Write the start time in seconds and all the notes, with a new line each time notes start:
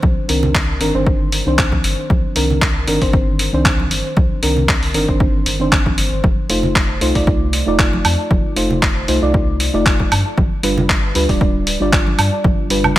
Already playing: D#3 C4 D4 C5
0.03 C2, kick, high conga
0.28 C2 D#3 C4 D4 A#4, open hi-hat
0.43 low conga
0.55 kick, clap
0.80 G1 D#3 C4 D4 A#4, open hi-hat
0.94 G1 D#3 C4 D4 C5
1.07 kick
1.32 open hi-hat
1.46 C2 D#3 C4 D4 C5
1.58 kick, clap
1.72 kick, high conga
1.84 G1, open hi-hat
2.10 C2, kick, high conga
2.35 C2 D#3 C4 D4 A#4, open hi-hat
2.50 low conga
2.62 kick, clap
2.87 G1 D#3 C4 D4 A#4, open hi-hat
3.01 G1 D#3 C4 D4 C5, kick, open hi-hat
3.13 kick
3.39 open hi-hat
3.52 C2 D#3 C4 D4 C5
3.65 kick, clap
3.80 high conga
3.91 G1, open hi-hat
4.17 C2, kick, high conga
4.42 C2 D#3 C4 D4 A#4, open hi-hat
4.57 low conga
4.69 kick, clap
4.83 open hi-hat
4.94 G1 D#3 C4 D4 A#4, open hi-hat
5.08 G1 D#3 C4 D4 C5, kick
5.20 kick
5.46 G1, open hi-hat
5.59 D#3 C4 D4 C5
5.72 kick, clap
5.86 kick, high conga
5.98 G1, open hi-hat
6.12 G1
6.24 F1, kick, high conga
6.49 F1 A3 D#4 F4 C5, open hi-hat
6.63 low conga
6.75 kick, clap
7.01 C2 A3 D#4 F4 C5, open hi-hat
7.15 C2 A3 D#4 F4 D5, kick, open hi-hat
7.27 kick
7.53 open hi-hat
7.66 F1 A3 D#4 F4 D5
7.79 kick, clap
7.93 high conga
8.05 F2, open hi-hat, high woodblock
8.31 F1, kick, high conga
8.56 F1 A3 D#4 F4 C5, open hi-hat
8.70 low conga
8.82 kick, clap
9.08 C2 A3 D#4 F4 C5, open hi-hat
9.22 C2 A3 D#4 F4 D5
9.34 kick
9.60 open hi-hat
9.73 F1 A3 D#4 F4 D5
9.86 kick, clap
10.00 kick, high conga
10.12 G2, open hi-hat, high woodblock
10.38 G1, kick, high conga
10.63 G1 G3 D4 F4 B4, open hi-hat
10.78 low conga
10.89 kick, clap
11.15 D2 G3 D4 F4 B4, open hi-hat
11.29 D1 G3 D4 F4 D5, kick, open hi-hat
11.41 kick
11.67 open hi-hat
11.80 G1 G3 D4 F4 D5
11.93 kick, clap
12.07 high conga
12.19 G2, open hi-hat, high woodblock
12.44 G1, kick, high conga
12.70 G1 G3 D4 F4 B4, open hi-hat
12.84 low conga, high woodblock